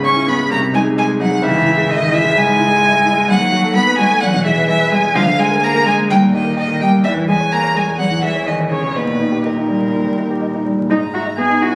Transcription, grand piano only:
0.00 0.47 C#2 medium
0.00 0.52 G#2 soft
0.00 0.27 C#4 soft
0.00 0.10 G#4 soft
0.00 0.22 C#5 soft
0.15 0.34 E4 soft
0.27 0.45 C#4 soft
0.38 0.50 G#3 soft
0.50 1.41 C2 medium
0.61 0.80 C3 soft
0.73 0.92 D#4 medium
0.84 1.03 G#4 medium
0.96 1.15 D#5 medium
1.08 1.27 G#4 medium
1.20 1.39 D#4 medium
1.31 1.43 G#3 soft
1.42 2.33 C#2 medium
1.54 1.73 G#2 medium
1.65 1.85 E4 medium
1.77 1.96 G#4 medium
1.89 2.08 E5 medium
2.01 2.20 G#4 medium
2.12 2.31 E4 medium
2.24 2.43 G#3 medium
2.36 3.26 C#2 medium
2.47 2.66 G#2 soft
2.59 2.78 E4 medium
2.71 2.89 G#4 medium
2.82 3.01 E5 medium
2.94 3.13 G#4 medium
3.05 3.24 E4 medium
3.18 3.29 G#3 medium
3.29 4.19 D#2 medium
3.40 3.59 D#3 medium
3.52 3.71 F#4 medium
3.64 3.83 A4 medium
3.75 3.94 F#5 medium
3.87 4.06 B4 medium
3.98 4.17 F#4 medium
4.10 4.22 A3 medium
4.22 5.12 E2 medium
4.34 4.52 B2 medium
4.45 4.64 G#4 medium
4.57 4.76 B4 medium
4.68 4.87 G#5 medium
4.80 4.99 B4 medium
4.92 5.11 G#4 medium
5.03 5.15 G#3 medium
5.15 6.07 D2 medium
5.26 5.45 D3 medium
5.39 5.58 G#4 medium
5.51 5.69 A#4 medium
5.63 5.81 G#5 medium
5.75 5.93 A#4 medium
5.87 6.05 G#4 medium
5.98 6.10 A#3 soft
6.10 7.02 D#2 medium
6.22 6.41 A#2 medium
6.33 6.52 G4 medium
6.45 6.64 A#4 medium
6.57 6.76 G5 medium
6.68 6.88 A#4 medium
6.81 7.00 G4 medium
6.92 7.04 A#3 medium
7.05 7.96 E2 medium
7.16 7.35 E3 soft
7.28 7.47 G#4 medium
7.40 7.59 C#5 medium
7.52 7.71 G#5 medium
7.64 7.82 C#5 soft
7.75 7.94 G#4 soft
7.87 8.06 G#3 soft
7.99 8.92 E2 medium
8.10 8.29 E3 soft
8.23 8.42 G#4 soft
8.35 8.54 C#5 soft
8.48 8.66 G#5 soft
8.60 8.78 C#5 soft
8.72 8.91 G#4 soft
8.84 8.96 G#3 soft
8.95 9.91 D#2 soft
9.07 9.27 A#2 soft
9.19 9.39 D#4 soft
9.32 9.52 G4 soft
9.43 9.64 D#5 soft
9.56 9.76 D#4 soft
9.69 9.88 G3 soft
9.81 10.01 A#2 soft
9.93 10.87 D#2 soft
10.06 10.25 G3 soft
10.18 10.37 D#4 soft
10.30 10.49 G4 soft
10.41 10.61 D#5 soft
10.54 10.74 D#4 soft
10.66 10.85 G3 soft
10.78 10.90 A#2 soft
10.89 11.75 G#2 medium
11.01 11.21 D#5 soft
11.13 11.26 E5 soft
11.26 11.45 D#5 soft
11.38 11.57 B3 soft
11.49 11.69 D#4 soft
11.61 11.73 E4 soft

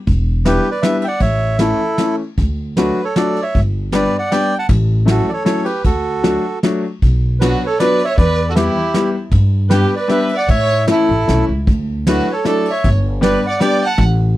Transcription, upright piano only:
0.45 0.65 G3 medium
0.45 0.65 B3 medium
0.45 0.65 D4 medium
0.45 0.65 E4 medium
0.83 1.02 G3 medium
0.83 1.02 B3 soft
0.83 1.02 D4 medium
0.83 1.03 E4 medium
1.60 1.80 E3 medium
1.60 1.80 A3 medium
1.60 1.80 C#4 soft
1.60 1.80 E4 medium
1.99 2.19 E3 medium
1.99 2.19 A3 soft
1.99 2.20 C#4 soft
1.99 2.19 E4 medium
2.78 2.98 F#3 medium
2.78 2.98 A3 medium
2.78 2.98 D4 medium
2.78 2.98 F#4 medium
3.16 3.36 F#3 medium
3.16 3.36 A3 soft
3.16 3.36 D4 medium
3.16 3.37 F#4 medium
3.93 4.12 G3 medium
3.93 4.12 B3 medium
3.93 4.13 D4 medium
3.93 4.12 G4 medium
4.32 4.51 G3 medium
4.32 4.51 B3 soft
4.32 4.51 D4 soft
4.32 4.51 G4 medium
5.06 5.27 F#3 medium
5.06 5.26 A3 medium
5.06 5.27 C#4 medium
5.06 5.27 E4 medium
5.45 5.65 F#3 medium
5.45 5.65 A3 medium
5.45 5.65 C#4 medium
5.45 5.65 E4 medium
6.23 6.43 F#3 medium
6.23 6.43 A3 medium
6.23 6.43 D4 soft
6.23 6.43 F#4 medium
6.63 6.83 F#3 medium
6.63 6.83 A3 medium
6.63 6.83 D4 medium
6.63 6.83 F#4 medium
7.41 7.61 F#3 medium
7.41 7.61 B3 soft
7.41 7.61 D4 medium
7.41 7.61 F#4 medium
7.81 8.00 F#3 medium
7.81 8.00 B3 medium
7.81 8.00 D4 medium
7.81 8.00 F#4 medium
8.55 8.75 G3 medium
8.55 8.75 B3 medium
8.55 8.75 E4 soft
8.55 8.75 G4 medium
8.94 9.13 G3 medium
8.94 9.13 B3 medium
8.94 9.14 E4 soft
8.94 9.14 G4 medium
9.70 9.90 G3 medium
9.70 9.90 B3 medium
9.70 9.90 D4 soft
9.70 9.90 G4 medium
10.08 10.28 G3 medium
10.08 10.29 B3 medium
10.08 10.29 D4 medium
10.08 10.29 G4 medium
10.87 11.08 E3 medium
10.87 11.08 A3 medium
10.87 11.08 C#4 medium
10.87 11.08 E4 medium
11.27 11.48 E3 medium
11.27 11.48 A3 soft
11.27 11.48 C#4 medium
11.27 11.48 E4 medium
12.07 12.27 F#3 medium
12.07 12.27 A3 soft
12.07 12.27 D4 medium
12.07 12.27 E4 medium
12.45 12.65 F#3 soft
12.45 12.65 A3 soft
12.45 12.65 D4 soft
12.45 12.65 E4 medium
13.21 13.41 G3 medium
13.21 13.41 B3 medium
13.21 13.41 D4 medium
13.21 13.41 G4 medium
13.60 13.79 G3 medium
13.60 13.80 B3 medium
13.60 13.80 D4 medium
13.60 13.80 G4 medium

